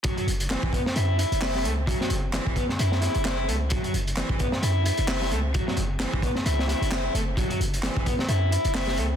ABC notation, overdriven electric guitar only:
X:1
M:4/4
L:1/16
Q:"Swing 16ths" 1/4=131
K:F#m
V:1 name="Overdriven electric guitar"
F, F, z2 E,2 B, z E2 E2 E2 A, z | F, F, z2 E,2 B, z E2 E2 E2 A, z | F, F, z2 E,2 B, z E2 E2 E2 A, z | F, F, z2 E,2 B, z E2 E2 E2 A, z |
F, F, z2 E,2 B, z E2 E2 E2 A, z |]